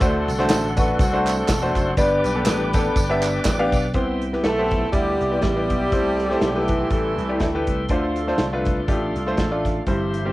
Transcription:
Already playing: A4 C6
0.00 D2 D3 A3 D4 F#4 C5 D5 F#5, kick, closed hi-hat, tambourine
0.28 C2, closed hi-hat, tambourine
0.38 A3 D4 F#4 C5, snare
0.50 A1, snare, clap, closed hi-hat, tambourine
0.76 A3 D4 F#4 B4, kick, closed hi-hat, tambourine
0.99 C2 A3 C4 F#4, kick, closed hi-hat, tambourine
1.13 A3 D4 F#4 C5
1.26 clap, closed hi-hat, tambourine
1.37 C4 F#4 A4
1.48 E1, kick, snare, clap, closed hi-hat, tambourine
1.62 A3 D4 F#4 C5
1.74 F#1 C5, kick, snare, closed hi-hat, tambourine
1.97 G1 G2 B3 D4 G4 B4 D5 G5 D6, kick, closed hi-hat, tambourine
2.24 B1, closed hi-hat, tambourine
2.35 B3 D4 G4 A4
2.46 A1, snare, clap, closed hi-hat, tambourine
2.73 B3 D4 G4 A4, kick, closed hi-hat, tambourine
2.96 G1, kick, closed hi-hat, tambourine
3.10 B3 D4 G4 E5
3.23 clap, closed hi-hat, tambourine
3.45 A1, kick, snare, clap, closed hi-hat, tambourine
3.59 B3 D4 G4 F5
3.72 B1, kick, closed hi-hat, tambourine
3.93 C2 C3 G3 B3 E4 G4 C5 E5 G5 C6, kick, closed hi-hat
4.22 closed hi-hat
4.33 B3 E4 G4 B4, snare
4.44 B1 A3 E4 A4, snare, closed hi-hat
4.58 B3 E4 G4 C5
4.71 kick, closed hi-hat
4.92 D2 G3 B3 E4 G4 B4, kick, closed hi-hat
5.21 C2, closed hi-hat
5.32 B3 E4 G4 D5
5.41 A1 G3 B3 E4 G4, kick, snare, closed hi-hat
5.56 B3 E4 G4 D5
5.70 B1, kick, closed hi-hat
5.91 C2 C3 A3 E4 G4 A4 C5 C6, kick, closed hi-hat
6.20 closed hi-hat
6.30 A3 E4 G4 C5, snare
6.41 B1, snare, closed hi-hat
6.55 A3 E4 G4 B4
6.68 E3, kick, closed hi-hat
6.90 A1 G3 A3 E4 G4 A4, kick, closed hi-hat
7.18 C2, closed hi-hat
7.29 A3 E4 G4 D5
7.40 D2, kick, snare, closed hi-hat
7.55 A3 E4 G4 B4
7.67 C2, kick, closed hi-hat
7.89 D2 D3 F3 A3 D4 F4 C5 D5 F5, kick, closed hi-hat
8.16 closed hi-hat
8.28 A3 D4 F4 C5, snare
8.38 C2, snare, closed hi-hat
8.53 A3 D4 F4 B4
8.65 kick, closed hi-hat
8.88 A1 A3 D4 F4 G4, kick, closed hi-hat
9.16 C2, closed hi-hat
9.26 A3 D4 F4 C5
9.37 A1, kick, snare, closed hi-hat
9.51 A3 D4 F4 D5
9.65 kick, snare, closed hi-hat
9.86 G1 G2 E3 G3 C4 E4 G4 C5 E5 C6, kick, closed hi-hat
10.14 closed hi-hat
10.25 G3 C4 E4 G4

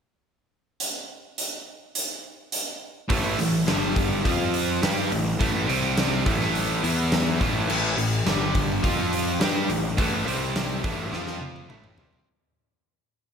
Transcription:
0.80 closed hi-hat
1.38 closed hi-hat
1.95 closed hi-hat
2.52 closed hi-hat
3.09 A1 A2 E3 A3, kick, open hi-hat
3.39 A1 A2 E3, snare, open hi-hat
3.66 G1 G2 D3 G3, snare, open hi-hat
3.96 kick, open hi-hat
4.24 F2 F3 C4 F4, kick, open hi-hat
4.54 open hi-hat
4.82 G2 G3 D4 G4, snare, open hi-hat
5.11 A1 A2 E3, open hi-hat
5.39 A1 A2 E3 A3, kick, open hi-hat
5.68 C2 C3 G3 C4, open hi-hat
5.97 snare, open hi-hat
6.25 A1 A2 E3 A3, kick, open hi-hat
6.41 snare
6.55 open hi-hat
6.83 E2 E3 B3 E4, open hi-hat
7.12 snare, open hi-hat
7.40 A1 A2 E3 A3, kick, open hi-hat
7.68 A1 A2 E3 A3, crash
7.98 A1 A2 E3, open hi-hat
8.25 G1 G2 D3 G3, snare, open hi-hat
8.55 kick, open hi-hat
8.83 F2 F3 C4 F4, kick, open hi-hat
9.13 open hi-hat
9.40 G2 G3 D4 G4, snare, open hi-hat
9.70 A1 A2 E3, open hi-hat
9.97 A1 A2 E3 A3, kick, open hi-hat
10.27 C2 C3 G3 C4, open hi-hat
10.56 snare, open hi-hat
10.83 A1 A2 E3 A3, kick, open hi-hat
11.12 F2 F3 C4 F4, snare
11.27 snare
11.41 high tom
11.56 high tom
11.69 A1 A2 E3 A3, mid tom
11.84 mid tom
11.98 C2 C3 G3 C4, floor tom
12.13 floor tom

